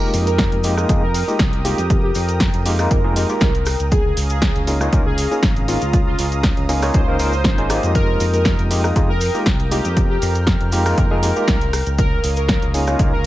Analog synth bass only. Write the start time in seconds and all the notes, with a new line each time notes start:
0.14 F2
0.52 F2
0.89 F2
1.40 C2
1.78 F2
2.15 F2
2.54 F2
2.91 F2
3.41 C2
3.80 C#2
4.17 C#2
4.56 C#2
4.93 C#2
5.43 G#1
5.82 C#2
6.19 C#2
6.57 C#2
6.94 C#2
7.45 G#1
7.83 F2
8.20 F2
8.59 F2
8.96 F2
9.46 C2
9.85 F2
10.22 F2
10.61 F2
10.98 F2
11.48 C2
11.87 C#2
12.24 C#2
12.62 C#2
12.99 C#2